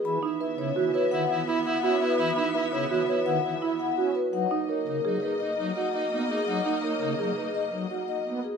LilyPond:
<<
  \new Staff \with { instrumentName = "Vibraphone" } { \time 6/4 \key b \major \tempo 4 = 168 b''8 r8 e''8 cis''8 r8 b'8 fis''8 r8 b''8 fis''8 r8 b'8 | b''8 r8 e''8 cis''8 r8 b'8 fis''8 r8 b''8 fis''8 r8 b'8 | fis''8 r8 cis''8 ais'8 r8 gis'8 dis''8 r8 fis''8 dis''8 r8 gis'8 | fis''8 r8 cis''8 ais'8 r8 gis'8 dis''8 r8 fis''8 dis''8 r8 gis'8 | }
  \new Staff \with { instrumentName = "String section" } { \time 6/4 \key b \major <b e''>1.~ | <b e''>1~ <b e''>4. r8 | <ais dis''>1.~ | <ais dis''>1~ <ais dis''>4. r8 | }
  \new Staff \with { instrumentName = "Marimba" } { \time 6/4 \key b \major r8 dis'8 b'8 r8 fis'8 cis''8 r4 e'8 r8 fis'8 r8 | r8 dis'8 b'8 r8 fis'8 cis''8 r4 e'8 r8 fis'8 r8 | r8 dis'8 ais'8 r8 gis'8 b'8 r4 fis'8 r4. | r8 dis'8 ais'8 r8 gis'8 b'8 r4 fis'8 r4. | }
  \new Staff \with { instrumentName = "Soprano saxophone" } { \time 6/4 \key b \major e'8 e'8 e'8 e'8 e'8 e'8 e'8 e'8 e'8 e'8 e'8 e'8 | e'8 e'8 e'8 e'8 e'8 e'8 e'8 e'8 e'8 e'8 e'8 r8 | dis'8 dis'8 dis'8 dis'8 dis'8 dis'8 dis'8 dis'8 dis'8 dis'8 dis'8 dis'8 | dis'8 dis'8 dis'8 dis'8 dis'8 dis'8 dis'8 dis'8 dis'8 dis'8 dis'8 r8 | }
  \new Staff \with { instrumentName = "Pipe organ" } { \clef bass \time 6/4 \key b \major e8 r4 cis8 e8 r8 dis8 e8 r4 cis'8 r8 | e8 r4 cis8 e8 r8 dis8 e8 r4 cis'8 r8 | fis8 r4 cis8 fis8 r4 fis8 r4 b8 r8 | fis8 r4 cis8 fis8 r4 fis8 r4 b8 r8 | }
>>